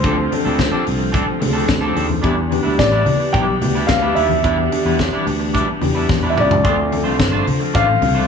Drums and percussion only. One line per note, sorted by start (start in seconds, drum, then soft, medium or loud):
0.04 kick loud
0.04 closed hi-hat medium
0.04 muted conga soft
0.32 open hi-hat medium
0.32 muted conga medium
0.59 kick loud
0.59 snare loud
0.59 closed hi-hat medium
0.59 high conga medium
0.86 open hi-hat medium
1.14 kick loud
1.14 closed hi-hat medium
1.14 muted conga medium
1.41 open hi-hat medium
1.41 muted conga medium
1.41 low conga medium
1.68 kick loud
1.68 snare loud
1.68 closed hi-hat medium
1.68 high conga medium
1.96 open hi-hat medium
2.10 high conga medium
2.24 kick loud
2.24 closed hi-hat medium
2.24 muted conga soft
2.52 open hi-hat medium
2.52 muted conga medium
2.79 kick loud
2.79 snare loud
2.79 closed hi-hat medium
2.79 high conga medium
3.06 open hi-hat medium
3.06 low conga medium
3.34 kick loud
3.34 closed hi-hat medium
3.34 muted conga medium
3.62 open hi-hat medium
3.62 muted conga medium
3.62 low conga medium
3.88 kick loud
3.88 snare loud
3.88 closed hi-hat medium
3.88 high conga medium
4.16 open hi-hat medium
4.29 high conga medium
4.44 kick loud
4.44 closed hi-hat medium
4.44 muted conga soft
4.72 open hi-hat medium
4.72 muted conga medium
4.99 kick medium
4.99 snare loud
4.99 closed hi-hat medium
4.99 high conga medium
5.27 open hi-hat medium
5.55 kick loud
5.55 closed hi-hat medium
5.55 muted conga medium
5.82 open hi-hat medium
5.82 muted conga medium
5.82 low conga medium
6.09 kick loud
6.09 snare medium
6.09 high conga medium
6.23 high tom soft
6.23 high conga soft
6.38 mid tom medium
6.50 floor tom medium
6.50 high conga medium
6.65 kick loud
6.65 closed hi-hat medium
6.65 muted conga soft
6.92 open hi-hat medium
6.92 muted conga medium
7.20 kick loud
7.20 snare loud
7.20 closed hi-hat medium
7.20 high conga medium
7.47 open hi-hat medium
7.47 low conga medium
7.75 kick loud
7.75 closed hi-hat medium
7.75 muted conga medium
8.02 open hi-hat medium
8.02 muted conga medium
8.02 low conga medium